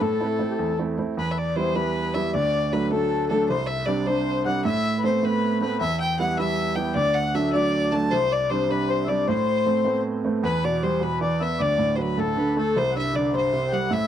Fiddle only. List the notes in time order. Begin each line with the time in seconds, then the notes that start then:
0.02 A4
1.19 B4
1.31 E5
1.38 D5
1.52 C5 D5
1.76 B4
2.14 E5
2.35 D5
2.73 B4
2.85 B4
2.91 A4
3.29 A4
3.49 C5
3.67 E5
3.86 D5
4.07 C5
4.46 F#5
4.65 E5
5.05 C5
5.25 B4
5.62 B4
5.80 E5
6.00 G5
6.19 F#5
6.39 E5
6.76 G5
6.95 D5
7.14 F#5
7.35 E5
7.53 D5
7.92 A5
8.11 C5
8.33 D5
8.51 C5
8.71 B4
8.90 C5
9.08 D5
9.29 C5
10.44 B4
10.64 D5
10.84 C5
11.03 B4
11.22 D5
11.43 E5
11.62 D5
11.96 C5
12.02 B4
12.20 A4
12.58 A4
12.78 C5
12.98 E5
13.16 D5
13.37 C5
13.74 F#5
13.93 E5